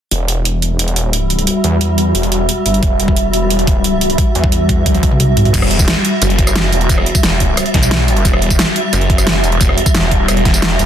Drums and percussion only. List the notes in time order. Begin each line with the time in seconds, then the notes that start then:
0.11 closed hi-hat
0.28 closed hi-hat
0.45 closed hi-hat
0.62 closed hi-hat
0.79 closed hi-hat
0.88 closed hi-hat
0.96 closed hi-hat
1.13 closed hi-hat
1.30 closed hi-hat
1.39 closed hi-hat
1.47 closed hi-hat
1.64 closed hi-hat
1.81 closed hi-hat
1.98 closed hi-hat
2.15 closed hi-hat
2.23 closed hi-hat
2.32 closed hi-hat
2.49 closed hi-hat
2.66 closed hi-hat
2.74 closed hi-hat
2.83 kick, closed hi-hat
3.00 closed hi-hat
3.08 kick
3.17 closed hi-hat
3.33 closed hi-hat
3.50 closed hi-hat
3.59 closed hi-hat
3.67 kick, closed hi-hat
3.84 closed hi-hat
4.01 closed hi-hat
4.10 closed hi-hat
4.18 kick, closed hi-hat
4.35 closed hi-hat
4.44 kick
4.52 closed hi-hat
4.69 kick, closed hi-hat
4.86 kick, closed hi-hat, high tom
4.95 closed hi-hat, high tom
5.03 kick, closed hi-hat
5.11 mid tom
5.20 closed hi-hat, mid tom
5.37 closed hi-hat, mid tom
5.45 closed hi-hat, mid tom
5.54 kick, closed hi-hat, crash, tambourine
5.62 cross-stick
5.71 closed hi-hat
5.79 kick, tambourine
5.88 snare, closed hi-hat, tambourine
6.05 closed hi-hat
6.22 closed hi-hat, tambourine
6.30 closed hi-hat
6.39 kick, closed hi-hat
6.47 cross-stick, tambourine
6.56 snare, closed hi-hat
6.73 closed hi-hat, tambourine
6.81 closed hi-hat
6.89 kick, closed hi-hat, tambourine
6.98 cross-stick
7.06 closed hi-hat
7.15 kick, tambourine
7.23 snare, closed hi-hat, tambourine
7.40 kick, closed hi-hat
7.57 cross-stick, closed hi-hat, tambourine
7.66 closed hi-hat
7.74 kick, snare, closed hi-hat
7.83 tambourine
7.91 snare, closed hi-hat
8.08 closed hi-hat, tambourine
8.17 closed hi-hat
8.25 kick, closed hi-hat, tambourine
8.34 cross-stick
8.42 closed hi-hat
8.50 kick, tambourine
8.59 snare, closed hi-hat, tambourine
8.76 closed hi-hat
8.93 closed hi-hat, tambourine
9.01 closed hi-hat
9.10 kick, closed hi-hat
9.18 cross-stick, tambourine
9.27 snare, closed hi-hat
9.44 closed hi-hat, tambourine
9.52 closed hi-hat
9.61 kick, closed hi-hat, tambourine
9.69 cross-stick
9.78 closed hi-hat
9.86 kick, tambourine
9.95 snare, closed hi-hat, tambourine
10.11 kick, closed hi-hat
10.28 cross-stick, closed hi-hat, tambourine
10.37 closed hi-hat
10.45 kick, snare, closed hi-hat, tambourine
10.54 tambourine
10.62 snare, closed hi-hat
10.79 closed hi-hat, tambourine